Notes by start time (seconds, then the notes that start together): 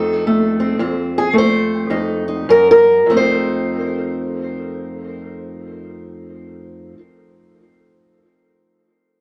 Already playing: F2 A3 D#4 A4
0.27 A3
0.60 C4
0.79 F2 C4
1.18 G#4
1.33 A3
1.38 C5
1.90 F2 D#4
2.28 D#4
2.49 F#2 A#4
2.71 A#4
3.06 F2 A3
3.11 C4 D#4
3.17 C5